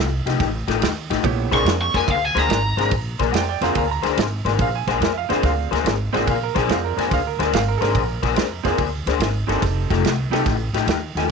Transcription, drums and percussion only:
0.27 snare, ride
0.40 kick, snare, ride
0.68 snare, ride
0.82 snare, ride
1.10 snare, ride
1.24 kick, ride
1.52 kick, snare, ride
1.66 snare, ride
1.94 kick, snare, ride
2.08 kick, ride
2.36 snare, ride
2.50 snare, ride
2.78 snare, ride
2.91 kick, ride
3.19 kick, snare, ride
3.34 snare, ride
3.61 snare, ride
3.75 kick, ride
4.03 snare, ride
4.18 snare, ride
4.46 snare, ride
4.59 kick, ride
4.88 kick, snare, ride
5.02 snare, ride
5.30 snare, ride
5.43 kick, snare, ride
5.73 snare, ride
5.86 snare, ride
6.14 snare, ride
6.27 kick, ride
6.56 kick, snare, ride
6.69 snare, ride
6.98 snare, ride
7.11 kick, snare, ride
7.40 snare, ride
7.53 snare, ride
7.82 snare, ride
7.95 kick, ride
8.23 kick, snare, ride
8.36 snare, ride
8.65 kick, snare, ride
8.78 kick, ride
9.07 snare, ride
9.20 snare, ride
9.49 snare, ride
9.62 kick, snare, ride
9.90 kick, snare, ride
10.04 snare, ride
10.33 snare, ride
10.46 kick, snare, ride
10.74 snare, ride
10.88 snare, ride
11.17 snare, ride

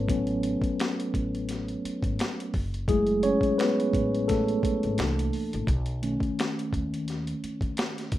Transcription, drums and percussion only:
0.09 kick, closed hi-hat
0.27 closed hi-hat
0.43 closed hi-hat
0.62 kick, closed hi-hat
0.80 finger snap, snare, closed hi-hat
1.00 closed hi-hat
1.14 kick, closed hi-hat
1.35 closed hi-hat
1.49 snare, closed hi-hat
1.68 closed hi-hat
1.85 closed hi-hat
2.03 kick, closed hi-hat
2.19 finger snap, snare, closed hi-hat
2.40 closed hi-hat
2.54 kick, open hi-hat
2.74 closed hi-hat
2.88 kick, closed hi-hat
3.07 closed hi-hat
3.23 closed hi-hat
3.41 kick, closed hi-hat
3.59 finger snap, snare, closed hi-hat
3.80 closed hi-hat
3.93 kick, closed hi-hat
4.15 closed hi-hat
4.29 kick, snare, closed hi-hat
4.48 closed hi-hat
4.63 kick, closed hi-hat
4.83 closed hi-hat
4.98 finger snap, snare, closed hi-hat
5.19 closed hi-hat
5.33 open hi-hat
5.53 closed hi-hat
5.67 kick, closed hi-hat
5.86 closed hi-hat
6.03 closed hi-hat
6.20 kick, closed hi-hat
6.39 finger snap, snare, closed hi-hat
6.59 closed hi-hat
6.73 kick, closed hi-hat
6.94 closed hi-hat
7.08 snare, closed hi-hat
7.27 closed hi-hat
7.44 closed hi-hat
7.61 kick, closed hi-hat
7.77 finger snap, snare, closed hi-hat
7.98 snare, closed hi-hat
8.12 kick, closed hi-hat

